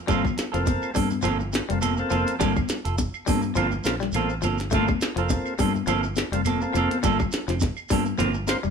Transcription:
0.07 G1 G3 A#3 C4 F4 A4, kick, closed hi-hat, low conga, shekere
0.24 muted clean electric guitar stroke, kick, high conga, claves, shekere
0.37 muted clean electric guitar stroke, muted fingered electric bass stroke, snare, closed hi-hat, shekere
0.52 F1 F3 A#3 C4 F4 A4, closed hi-hat, shekere
0.65 muted clean electric guitar stroke, kick, closed hi-hat, high conga, shekere
0.82 claves, shekere
0.94 G2 G3 A#3 C4 A4, kick, open hi-hat, high conga, shekere
1.10 muted clean electric guitar stroke, high conga, low conga, shekere
1.22 G1 F3 A#3 C4 F4 A4, closed hi-hat, claves, shekere
1.40 muted clean electric guitar stroke, low conga, shekere
1.52 muted clean electric guitar stroke, snare, closed hi-hat, high conga, shekere
1.69 F1 G3 A#3 C4 F4 A4, closed hi-hat, shekere
1.81 A#3 C4 F4 A4, closed hi-hat, high conga, claves, shekere
1.97 A#3 C4 F4 A4, muted clean electric guitar stroke, shekere
2.10 F1 F3 A#3 F4 A4, muted clean electric guitar stroke, closed hi-hat, high conga, claves, shekere
2.26 muted clean electric guitar stroke, closed hi-hat, shekere
2.39 G1 G3 A#3 C4 F4 A4, kick, snare, closed hi-hat, low conga, shekere
2.56 muted clean electric guitar stroke, kick, high conga, claves, shekere
2.69 muted clean electric guitar stroke, muted fingered electric bass stroke, snare, closed hi-hat, shekere
2.85 F1 F4 A4, muted clean electric guitar stroke, closed hi-hat, shekere
2.98 muted clean electric guitar stroke, kick, closed hi-hat, high conga, shekere
3.14 claves, shekere
3.26 G2 G3 A#3 C4 F4 A4, kick, open hi-hat, high conga, shekere
3.42 muted clean electric guitar stroke, high conga, shekere
3.55 G1 F3 A#3 C4 F4 A4, muted clean electric guitar stroke, closed hi-hat, claves, shekere
3.71 muted clean electric guitar stroke, low conga, shekere
3.84 A#1 A#3 C4 F4 A4, muted clean electric guitar stroke, snare, closed hi-hat, high conga, shekere
4.00 G3, snare, shekere
4.12 A1 A#3 C4 F4 A4, closed hi-hat, high conga, claves, shekere
4.30 muted clean electric guitar stroke, shekere
4.42 G1 F3 A#3 C4 F4 A4, closed hi-hat, claves, shekere
4.58 muted clean electric guitar stroke, snare, closed hi-hat, shekere
4.71 G1 A3 A#3 C4 F4 A4, kick, closed hi-hat, low conga, shekere
4.88 muted clean electric guitar stroke, kick, high conga, claves, shekere
5.00 muted fingered electric bass stroke, muted clean electric guitar stroke, snare, closed hi-hat, shekere
5.16 F1 F3 A#3 C4 F4 A4, closed hi-hat, shekere
5.29 muted clean electric guitar stroke, kick, closed hi-hat, high conga, shekere
5.46 claves, shekere
5.59 G2 G3 A#3 C4 F4 A4, kick, open hi-hat, high conga, shekere
5.75 muted clean electric guitar stroke, high conga, low conga, shekere
5.87 G1 F3 A#3 C4 F4 A4, closed hi-hat, claves, shekere
6.03 muted clean electric guitar stroke, low conga, shekere
6.16 muted clean electric guitar stroke, snare, closed hi-hat, high conga, shekere
6.32 F1 G3 A#3 C4 F4 A4, closed hi-hat, shekere
6.45 A#3 C4 F4 A4, closed hi-hat, high conga, claves, shekere
6.61 A#3 C4 F4 A4, muted clean electric guitar stroke, shekere
6.73 F1 F3 A#3 C4 F4 A4, closed hi-hat, claves, shekere
6.91 muted clean electric guitar stroke, closed hi-hat, high conga, shekere
7.03 G1 G3 A#3 F4 A4, muted clean electric guitar stroke, kick, closed hi-hat, low conga, shekere
7.19 muted clean electric guitar stroke, kick, claves, shekere
7.32 muted clean electric guitar stroke, muted fingered electric bass stroke, snare, closed hi-hat, shekere
7.48 F1 F3 C4, muted clean electric guitar stroke, snare, closed hi-hat, shekere
7.60 muted clean electric guitar stroke, kick, snare, closed hi-hat, high conga, shekere
7.76 claves, shekere
7.89 G2 G3 A#3 C4 F4 A4, kick, open hi-hat, high conga, shekere
8.06 muted clean electric guitar stroke, shekere
8.18 G1 F3 A#3 C4 F4 A4, muted clean electric guitar stroke, closed hi-hat, claves, shekere
8.34 muted clean electric guitar stroke, low conga, shekere
8.47 A#3 C4 F4 C5, muted clean electric guitar stroke, snare, closed hi-hat, high conga, shekere
8.63 F1 G3, shekere

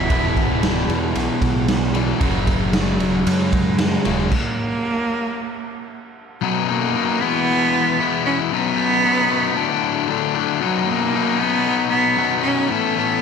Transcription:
Already playing: E4
0.10 E1 E2 B2 E3, kick, ride
0.24 E1
0.36 G#1, kick, ride
0.50 C#1
0.63 snare, ride
0.89 E2, ride
1.15 B1, ride
1.42 B1, kick, ride
1.68 snare, ride
1.94 E2 B2 E3, ride
2.21 F#1 F#2 C#3 F#3, kick, ride
2.47 kick, ride
2.73 G#3, snare, ride
3.00 D#1 F#3, ride
3.27 F#2 G#3, ride
3.53 kick, ride
3.78 snare, ride
4.05 D#1 F#2 C#3 F#3, ride
4.31 A#3, kick, crash
6.41 B1 F#2 B2 F#3 D#4
6.69 B2 F#3 A#3 D#4
6.95 F#2 B2 F#3 D#4
7.21 E2 B2 E3 G#3 B3 E4
7.99 E2 B2 E3 G#3 B3 E4
8.26 E3 G#3 B3 C#4 E4
8.51 B1 F#2 B2 F#3 B3 D#4
8.77 B2 F#3 D#4
9.03 F#2 B2 F#3 D#4
9.29 B2 F#3 D#4
9.55 D2 A2 D3 F#3 A3 D4
10.08 D2 A2 D3 F#3 A3 D4
10.34 D3 F#3 A3 D4
10.60 B1 F#2 B2 F#3 D#4
10.87 B2 F#3 A#3 D#4
11.14 F#2 B2 F#3 D#4
11.39 B2 F#3 B3 D#4
11.90 B3
12.17 B1 F#2 B2 F#3 D#4
12.42 B2 F#3 C#4 D#4
12.69 A2 E3 A3 B3 C#4 E4 A4
12.96 A3 C#4 E4 A4

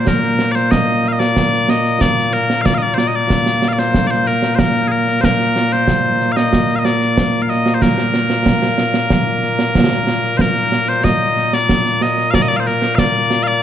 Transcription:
Already playing: A#2 A#3
0.07 A#4, concert bass drum, snare
0.23 snare
0.39 snare
0.52 C5 D5, snare
0.71 D#5, concert bass drum, snare
1.04 snare
1.08 F5
1.12 D#5
1.19 D5, snare
1.37 concert bass drum, snare
1.53 snare
1.69 D#5, snare
1.85 snare
2.01 D5, concert bass drum, snare
2.18 snare
2.33 A#4, snare
2.50 snare
2.62 F5
2.66 D5, concert bass drum, snare
2.74 D#5 F5
2.82 D5
2.94 C5 D5, snare
3.07 D#5
3.15 D5
3.30 concert bass drum, snare
3.46 snare
3.62 snare
3.68 F5
3.73 D5
3.78 C5, snare
3.94 concert bass drum, snare
4.07 C5 D5, snare
4.27 A#4, snare
4.43 snare
4.55 A#4 C5, concert bass drum, snare
4.75 snare
4.87 G#4 A#4
5.07 snare
5.21 A#4 C5, concert bass drum, snare
5.40 snare
5.56 snare
5.72 C5, snare
5.88 concert bass drum, snare
6.21 snare
6.32 F5
6.36 D#5, snare
6.53 concert bass drum, snare
6.69 snare
6.76 D#5 F5
6.85 D5, snare
7.01 snare
7.17 concert bass drum, snare
7.42 F5
7.50 D#5, snare
7.66 snare
7.74 C5
7.82 A#4, concert bass drum, snare
7.98 snare
8.14 snare
8.30 snare
8.46 concert bass drum, snare
8.62 snare
8.78 snare
8.94 snare
9.10 concert bass drum, snare
9.43 snare
9.59 snare
9.75 concert bass drum, snare
9.91 snare
10.07 snare
10.24 snare
10.37 A#4 C5, concert bass drum, snare
10.56 snare
10.72 snare
10.88 C5, snare
11.04 D#5, concert bass drum, snare
11.37 snare
11.53 D5, snare
11.69 concert bass drum, snare
11.86 snare
12.01 D#5, snare
12.18 snare
12.31 D5 F5, concert bass drum, snare
12.42 D#5
12.48 D5, snare
12.56 C5 F5
12.66 A#4, snare
12.82 snare
12.95 D5 F5, concert bass drum, snare
13.31 snare
13.43 F5
13.47 D5

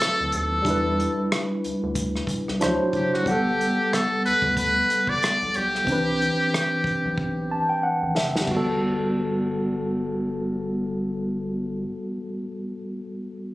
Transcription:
Already playing: F#3 C4 E4 A4 B4
0.00 cross-stick, closed hi-hat
0.20 D2
0.32 D#2 A4, closed hi-hat
0.62 G3 D4, kick, closed hi-hat
0.66 E2 E4
0.70 B4
1.00 closed hi-hat
1.32 cross-stick, closed hi-hat
1.64 D2, closed hi-hat
1.83 D2
1.95 kick, closed hi-hat
2.16 cross-stick
2.27 C2, kick, closed hi-hat
2.48 C2, cross-stick
2.60 D2 F3 D4 E4 C5, cross-stick, closed hi-hat
2.66 F#3
2.81 B1
2.93 F#1 G4, kick, closed hi-hat
3.14 F#4, cross-stick
3.23 G3 B3, kick
3.27 G1 G4 A4 F#5, closed hi-hat
3.61 closed hi-hat
3.93 A4, cross-stick, closed hi-hat
4.25 D2 B4, closed hi-hat
4.42 D2, kick
4.57 B4, kick, closed hi-hat
4.90 G1, closed hi-hat
5.07 G1 D5, kick
5.23 cross-stick, closed hi-hat
5.42 B1
5.54 B1 G4, closed hi-hat
5.75 cross-stick
5.84 C2 E3 C4, kick, closed hi-hat
5.90 D4 B4
6.22 closed hi-hat
6.54 cross-stick, closed hi-hat
6.84 B1, kick, closed hi-hat
7.05 B1
7.18 kick
7.51 A5
7.69 G5
7.83 F#5
8.03 A1
8.16 F#1 E5, snare
8.36 snare
8.41 G3
8.46 G1 B3, kick, floor tom, crash
8.51 F#4
8.57 A4

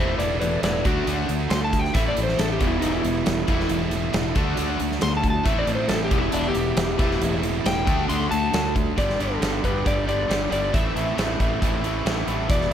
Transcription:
Already playing: E1 A2 E3 C5 E5
0.00 A3 C4 E4
0.18 E1 A2 E3 B4 D5, closed hi-hat
0.40 A2 E3 B4 D5, closed hi-hat
0.62 E1 A2 E3 B4 D5, snare, closed hi-hat
0.85 D2 D3 A3 D4 F#4, kick, closed hi-hat
1.07 D2 D3 A3 D4, closed hi-hat
1.29 D2 D3 A3, closed hi-hat
1.50 D2 D3 A3 C6, snare, closed hi-hat
1.64 A5
1.73 D3 A3, kick, closed hi-hat
1.79 G5
1.85 snare
1.94 A1 A2 E3 A3 C4 E4 E5, kick, closed hi-hat
2.08 D5
2.17 A1 A2 E3, closed hi-hat
2.23 C5
2.29 snare
2.38 A1 A2 E3 A4, snare, closed hi-hat
2.53 G4
2.59 E1 E2 B2 E3 G3 B3 E4, kick, closed hi-hat
2.67 E4
2.80 E1 E2 B2 E3 D#4, closed hi-hat
2.96 E4
3.03 E1 E2 B2, closed hi-hat
3.25 E1 E2 B2, snare, closed hi-hat
3.47 E1 A2 E3 A3 C4 E4, kick, closed hi-hat
3.60 snare
3.69 E1 A2 E3, closed hi-hat
3.90 A2 E3, closed hi-hat
4.13 E1 A2 E3, snare, closed hi-hat
4.35 D2 D3 A3 D4 F#4, kick, closed hi-hat
4.57 D2 D3 A3 D4, closed hi-hat
4.80 D2 D3 A3, closed hi-hat
4.92 snare
5.01 D2 D3 A3 C6, snare, closed hi-hat
5.17 A5
5.22 D3 A3, kick, closed hi-hat
5.30 A5
5.43 A1 A2 E3 A3 C4 E5, kick, closed hi-hat
5.48 E4
5.59 D5
5.66 A1 A2 E3, closed hi-hat
5.75 C5
5.88 A1 A2 E3 A4, snare, closed hi-hat
6.05 G4
6.11 E1 E2 B2 E3 G3 B3 E4, kick, closed hi-hat
6.18 E4
6.32 E1 E2 B2 E3 D4, closed hi-hat
6.48 G4
6.54 E1 E2 B2, closed hi-hat
6.76 E1 E2 B2, snare, closed hi-hat
6.98 E1 A2 E3 A3 C4 E4, kick, closed hi-hat
7.11 snare
7.21 E1 A2 E3, closed hi-hat
7.43 A2 E3, closed hi-hat
7.65 E1 A2 E3 G5, snare, closed hi-hat
7.86 D2 D3 A3 D4 F#4, kick, closed hi-hat
8.08 D2 D3 A3 D4 C6, closed hi-hat
8.31 D2 D3 A3 A5, closed hi-hat
8.53 D2 D3 A3, snare, closed hi-hat
8.75 D3 A3, kick, closed hi-hat
8.96 G1 G2 D3 G3 B3 D4 G4 D5, kick, closed hi-hat
9.10 snare
9.18 G1 G2 D3 G3 B3 D4 G4 A4, closed hi-hat
9.41 G1 G2 D3 G3 B3 D4 G4, snare, closed hi-hat
9.63 G1 G2 D3 G3 B3 D4 G4 B4, kick, closed hi-hat
9.85 G1 G2 D3 G3 B3 D4 G4 D5, kick, closed hi-hat
10.06 G2 D3 G3 B3 D4 G4 D5, closed hi-hat
10.28 G1 G2 D3 G3 B3 D4 G4, snare, closed hi-hat
10.50 G1 G2 D3 G3 B3 D4 G4 D5, closed hi-hat
10.73 A1 A2 E3 A3 C4 E4 E5, kick, closed hi-hat
10.95 A1 A2 E3 A3 C4 E4, closed hi-hat
11.17 A1 A2 E3 A3 C4 E4, snare, closed hi-hat
11.40 A1 A2 E3 A3 C4 E4, kick, closed hi-hat
11.62 A1 A2 E3 A3 C4 E4, kick, closed hi-hat
11.84 A2 E3 A3 C4 E4, closed hi-hat
12.05 A1 A2 E3 A3 C4 E4, snare, closed hi-hat
12.27 A1 A2 E3 A3 C4 E4, closed hi-hat
12.49 E1 E2 B2 E3 G3 B3 E4 D5, kick, closed hi-hat
12.61 snare

